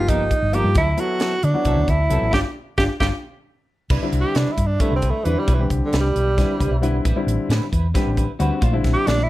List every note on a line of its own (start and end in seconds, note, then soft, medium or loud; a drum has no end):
0.00 0.31 G1 medium
0.00 0.31 F3 medium
0.00 0.31 A#3 medium
0.00 0.32 D#4 medium
0.00 0.10 F4 medium
0.00 0.32 G4 medium
0.09 0.23 F3 medium
0.09 0.23 B3 medium
0.09 0.56 D#4 medium
0.09 0.23 D#4 medium
0.09 0.23 A#4 medium
0.09 kick medium
0.09 closed hi-hat medium
0.31 kick medium
0.31 closed hi-hat medium
0.42 0.62 G1 medium
0.52 0.76 F3 medium
0.52 0.67 F3 medium
0.52 0.76 A#3 medium
0.52 0.67 B3 medium
0.52 0.76 D#4 medium
0.52 0.68 D#4 medium
0.52 0.76 F4 medium
0.52 0.77 G4 medium
0.52 0.68 A#4 medium
0.52 closed hi-hat medium
0.64 0.74 G2 medium
0.75 0.95 D2 medium
0.75 0.90 F#3 medium
0.75 0.90 C4 medium
0.75 0.90 E4 medium
0.75 1.01 E4 medium
0.75 0.91 A4 medium
0.75 kick loud
0.75 closed hi-hat medium
0.97 1.32 F#3 medium
0.97 1.32 B3 medium
0.97 1.32 E4 medium
0.97 1.45 F#4 loud
0.97 1.32 A4 medium
0.97 closed hi-hat medium
1.20 1.34 F#3 medium
1.20 1.35 C4 medium
1.20 1.35 E4 medium
1.20 1.35 A4 medium
1.20 snare medium
1.20 closed hi-hat medium
1.43 1.53 D3 loud
1.43 1.91 D4 medium
1.43 closed hi-hat medium
1.54 1.88 F#3 medium
1.54 1.88 B3 medium
1.54 1.88 E4 medium
1.54 1.89 F#4 medium
1.54 muted fingered electric bass stroke soft
1.65 1.75 C2 medium
1.65 1.80 F#3 medium
1.65 1.80 C4 medium
1.65 1.80 E4 medium
1.65 1.80 A4 medium
1.65 kick medium
1.65 closed hi-hat medium
1.77 1.86 D2 medium
1.88 2.07 D2 medium
1.88 2.02 C4 soft
1.88 2.02 E4 soft
1.88 2.33 E4 medium
1.88 2.02 A4 soft
1.88 kick medium
1.88 closed hi-hat medium
2.10 2.20 C2 medium
2.10 2.33 F#3 medium
2.10 2.25 F#3 medium
2.10 2.33 B3 medium
2.10 2.25 C4 medium
2.10 2.33 E4 medium
2.10 2.25 E4 medium
2.10 2.33 A4 medium
2.10 2.25 A4 medium
2.10 closed hi-hat medium
2.22 2.31 A1 medium
2.33 2.42 G1 medium
2.33 2.40 D4 medium
2.33 2.40 F4 medium
2.33 2.40 G4 medium
2.33 kick medium
2.33 snare medium
2.78 2.86 G1 medium
2.78 2.85 D4 loud
2.78 2.86 D4 medium
2.78 2.85 F4 medium
2.78 2.86 F4 medium
2.78 2.84 G4 loud
2.78 2.85 G4 medium
2.78 kick medium
2.78 snare medium
3.00 3.09 G1 medium
3.00 3.08 D4 medium
3.00 3.08 F4 medium
3.00 3.06 G4 medium
3.00 3.08 G4 medium
3.00 kick medium
3.00 snare loud
3.90 4.00 C2 loud
3.90 4.04 G3 medium
3.90 4.04 D4 medium
3.90 4.04 E4 medium
3.90 4.04 B4 loud
3.90 kick loud
3.90 crash medium
4.02 4.49 D3 medium
4.02 4.49 G3 medium
4.02 4.50 C4 medium
4.02 4.50 E4 medium
4.02 muted fingered electric bass stroke soft
4.12 4.22 C2 medium
4.12 closed hi-hat medium
4.21 4.38 G4 medium
4.35 4.45 C3 medium
4.35 4.49 G3 medium
4.35 4.49 D4 medium
4.35 4.53 D4 medium
4.35 4.49 E4 medium
4.35 4.49 B4 medium
4.35 snare medium
4.35 closed hi-hat medium
4.47 muted fingered electric bass stroke soft
4.52 4.68 E4 medium
4.57 4.77 G2 medium
4.57 kick medium
4.57 closed hi-hat medium
4.67 4.82 D4 medium
4.80 5.08 D3 medium
4.80 5.08 G3 medium
4.80 4.94 G3 medium
4.80 4.95 A3 medium
4.80 5.08 C4 medium
4.80 4.94 D4 medium
4.80 5.08 D4 medium
4.80 4.94 E4 medium
4.80 4.94 B4 medium
4.80 kick loud
4.80 closed hi-hat medium
4.91 5.11 C2 medium
4.96 5.12 C4 medium
5.02 5.17 D4 soft
5.02 5.17 E4 soft
5.02 5.17 B4 medium
5.02 kick medium
5.02 closed hi-hat medium
5.11 5.26 A3 medium
5.25 5.35 E2 medium
5.25 5.46 D3 medium
5.25 5.41 E3 medium
5.25 5.39 G3 medium
5.25 5.46 G3 medium
5.25 5.46 C4 medium
5.25 5.39 D4 medium
5.25 5.39 E4 medium
5.25 5.46 E4 medium
5.25 5.39 B4 medium
5.25 closed hi-hat medium
5.39 5.56 G3 medium
5.47 5.67 B1 loud
5.47 5.61 G3 medium
5.47 5.61 D4 medium
5.47 5.61 E4 medium
5.47 5.61 B4 medium
5.47 kick medium
5.47 closed hi-hat medium
5.54 5.69 E3 medium
5.59 6.06 D3 medium
5.59 6.06 G3 medium
5.59 6.07 C4 medium
5.59 6.07 G4 medium
5.70 5.80 C2 medium
5.70 kick medium
5.70 closed hi-hat medium
5.86 6.00 D3 medium
5.92 6.12 C2 loud
5.92 6.06 G3 medium
5.92 6.06 D4 medium
5.92 6.06 E4 medium
5.92 6.07 B4 medium
5.92 snare medium
5.92 closed hi-hat medium
6.00 6.87 G3 medium
6.15 6.44 B1 medium
6.15 6.29 D4 soft
6.15 6.29 E4 soft
6.15 6.28 B4 soft
6.15 closed hi-hat medium
6.37 6.64 D3 medium
6.37 6.65 G3 medium
6.37 6.51 G3 medium
6.37 6.65 C4 medium
6.37 6.51 D4 medium
6.37 6.65 E4 medium
6.37 6.51 E4 medium
6.37 6.51 B4 medium
6.37 kick medium
6.37 snare soft
6.37 closed hi-hat medium
6.49 muted fingered electric bass stroke soft
6.60 6.70 C2 medium
6.60 6.74 D4 soft
6.60 6.74 E4 soft
6.60 6.74 B4 medium
6.60 6.70 C5 medium
6.60 kick medium
6.60 closed hi-hat medium
6.71 7.00 B1 medium
6.71 6.82 E5 medium
6.82 7.02 D3 medium
6.82 7.02 G3 medium
6.82 6.96 G3 medium
6.82 7.03 C4 medium
6.82 6.96 D4 medium
6.82 7.03 E4 loud
6.82 6.96 E4 medium
6.82 6.97 B4 medium
6.82 7.03 F#5 medium
6.82 closed hi-hat medium
7.05 7.15 A1 medium
7.05 7.18 G3 medium
7.05 7.19 C4 medium
7.05 7.19 E4 medium
7.05 7.19 B4 medium
7.05 kick medium
7.05 closed hi-hat medium
7.16 7.64 D3 medium
7.16 7.64 G3 medium
7.16 7.64 C4 medium
7.16 7.64 E4 loud
7.27 7.37 A1 medium
7.27 closed hi-hat medium
7.49 7.59 A2 medium
7.49 7.63 G3 medium
7.49 7.63 C4 medium
7.49 7.64 E4 medium
7.49 7.64 B4 medium
7.49 snare medium
7.49 closed hi-hat medium
7.61 muted fingered electric bass stroke soft
7.72 7.92 E2 medium
7.72 7.86 C4 soft
7.72 7.86 E4 soft
7.72 7.86 B4 soft
7.72 kick medium
7.72 closed hi-hat medium
7.94 8.22 D3 medium
7.94 8.08 G3 medium
7.94 8.22 G3 medium
7.94 8.08 C4 medium
7.94 8.22 C4 medium
7.94 8.08 E4 medium
7.94 8.22 G4 medium
7.94 8.08 B4 medium
7.94 kick loud
7.94 snare soft
7.94 closed hi-hat medium
8.07 8.26 A1 medium
8.17 8.31 C4 soft
8.17 8.31 E4 soft
8.17 8.31 B4 medium
8.17 kick medium
8.17 closed hi-hat medium
8.39 8.49 D2 medium
8.39 8.60 D3 medium
8.39 8.60 G3 medium
8.39 8.53 G3 medium
8.39 8.60 C4 medium
8.39 8.53 C4 medium
8.39 8.54 E4 medium
8.39 8.60 F#4 loud
8.39 8.54 B4 medium
8.39 closed hi-hat medium
8.61 8.81 A#1 medium
8.61 8.75 A3 medium
8.61 8.75 D4 medium
8.61 8.75 F4 medium
8.61 8.76 C5 medium
8.61 kick medium
8.61 closed hi-hat medium
8.72 9.20 D3 medium
8.72 9.20 G3 medium
8.72 9.21 C4 medium
8.72 9.21 E4 loud
8.84 8.94 A#1 medium
8.84 kick medium
8.84 snare soft
8.84 closed hi-hat medium
8.94 9.08 G4 medium
9.06 9.26 A#1 loud
9.06 9.20 A3 soft
9.06 9.21 D4 medium
9.06 9.25 D4 loud
9.06 9.21 F4 medium
9.06 9.21 C5 medium
9.06 snare medium
9.06 closed hi-hat medium
9.23 9.29 E4 medium